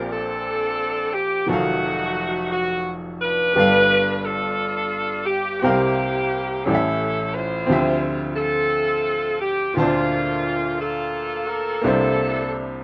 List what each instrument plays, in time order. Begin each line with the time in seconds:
Already playing: upright piano A#1 A#2 A#3 C4 G4 D5, saxophone section A#4
0.11 saxophone section C4 D4 A4
1.13 saxophone section G4
1.47 upright piano F1 F2 D#3 F#3 A4, saxophone section A3 D#4 F#4
1.53 upright piano F5
2.51 saxophone section F#4
3.21 saxophone section D4 F4 B4
3.53 upright piano G1 G2 B3 G4
3.58 upright piano A4 F5
4.23 saxophone section D4 F4 A4
5.25 saxophone section G4
5.60 upright piano C3 C4 G4, saxophone section A#3 G4
5.64 upright piano C2 A#4 F5
6.63 upright piano A1 A2 C#4 G4, saxophone section C#4 E4 A4
6.68 upright piano A4 D5
6.75 upright piano E5
7.33 saxophone section E4 F4 C5
7.66 upright piano D2 D3 F3 C4 G4
7.72 upright piano E5
8.35 saxophone section C4 F4 A4
9.40 saxophone section G4
9.74 upright piano D2 A#2 D3 C4, saxophone section A3 A#3 F4
9.78 upright piano C5 A5
9.82 upright piano D4
10.78 saxophone section A#3 F4 A4
11.47 saxophone section A#4
11.81 upright piano C2 C3 A#3 D4 E4, saxophone section D4 E4 A4
11.87 upright piano C5